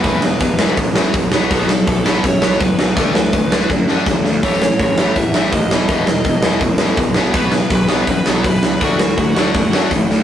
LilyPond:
<<
  \new Staff \with { instrumentName = "Lead electric guitar" } { \time 4/4 \key b \mixolydian \tempo 4 = 164 b'2 r2 | a'4 a'4 cis''4 b'4 | b'2 r2 | cis''4 cis''4 e''4 dis''4 |
dis''2 r2 | b'4 b'4 b'8 a'8 b'4 | fis'2. r4 | }
  \new Staff \with { instrumentName = "Distorted electric guitar" } { \clef bass \time 4/4 \key b \mixolydian <e, b, e>8 <e, b,>8 <e, b,>8 <e, b, e>8 <e, b,>8 <e, b, e>8 <e, b,>8 <b, fis b>8 | <b, fis b>8 <b, fis>8 <b, fis>8 <b, fis b>8 <b, fis>8 <b, fis b>8 <b, fis>8 <b, fis>8 | <d a d'>8 <d a>8 <d a>8 <d a d'>8 <d a>8 <d a d'>8 <d a>8 <d a>8 | <a, e a>8 <a, e>8 <a, e>8 <a, e a>8 <a, e>8 <a, e a>8 <a, e>8 <e, b, e>8 |
<e, b, e>8 <e, b,>8 <e, b,>8 <e, b, e>8 <e, b,>8 <e, b, e>8 <e, b,>8 <b, fis b>8 | <b, fis b>8 <b, fis>8 <b, fis>8 <b, fis b>8 <b, fis>8 <b, fis b>8 <b, fis>8 <b, fis>8 | <d a d'>8 <d a>8 <d a>8 <d a d'>8 <d a>8 <d a d'>8 <d a>8 <d a>8 | }
  \new Staff \with { instrumentName = "Distorted electric guitar" } { \clef bass \time 4/4 \key b \mixolydian <e, b, e>8 <e, b,>8 <e, b,>8 <e, b, e>8 <e, b,>8 <e, b, e>8 <e, b,>8 <b, fis b>8 | <b, fis b>8 <b, fis>8 <b, fis>8 <b, fis b>8 <b, fis>8 <b, fis b>8 <b, fis>8 <b, fis>8 | <d a d'>8 <d a>8 <d a>8 <d a d'>8 <d a>8 <d a d'>8 <d a>8 <d a>8 | <a, e a>8 <a, e>8 <a, e>8 <a, e a>8 <a, e>8 <a, e a>8 <a, e>8 <e, b, e>8 |
<e, b, e>8 <e, b,>8 <e, b,>8 <e, b, e>8 <e, b,>8 <e, b, e>8 <e, b,>8 <b, fis b>8 | <b, fis b>8 <b, fis>8 <b, fis>8 <b, fis b>8 <b, fis>8 <b, fis b>8 <b, fis>8 <b, fis>8 | <d a d'>8 <d a>8 <d a>8 <d a d'>8 <d a>8 <d a d'>8 <d a>8 <d a>8 | }
  \new Staff \with { instrumentName = "Picked electric bass" } { \clef bass \time 4/4 \key b \mixolydian e,,8 e,,8 e,,8 e,,8 a,,4 b,,8 b,,8 | b,,4 b,,8 b,,8 fis,8 b,,8 fis,,8 b,,8 | d,8 d,8 d,8 d,8 fis,4 a,,8 d,8 | a,,4 a,,8 a,,8 e,8 a,,8 dis,8 e,,8 |
e,,8 e,,8 e,,8 e,,8 a,,4 b,,8 b,,8 | b,,4 b,,8 b,,8 fis,8 b,,8 fis,,8 cis,8 | d,8 d,8 d,8 d,8 fis,4 a,,8 d,8 | }
  \new DrumStaff \with { instrumentName = "Drums" } \drummode { \time 4/4 <hho bd>8 sn8 <hho bd>8 sn8 <hho bd>8 sn8 <hho bd>8 sn8 | <hho bd>8 sn8 <hho bd>8 sn8 <hho bd>8 sn8 <hho bd>8 sn8 | <hho bd>8 sn8 <hho bd>8 sn8 <bd sn>8 sn8 <bd sn>8 sn8 | <hho bd>8 sn8 <hho bd>8 sn8 <hho bd>8 sn8 <hho bd>8 sn8 |
<hho bd>8 sn8 <hho bd>8 sn8 <hho bd>8 sn8 <hho bd>8 sn8 | <hho bd>8 sn8 <hho bd>8 sn8 <hho bd>8 sn8 <hho bd>8 sn8 | <hho bd>8 sn8 <hho bd>8 sn8 <hho bd>8 sn8 <hho bd>8 sn8 | }
>>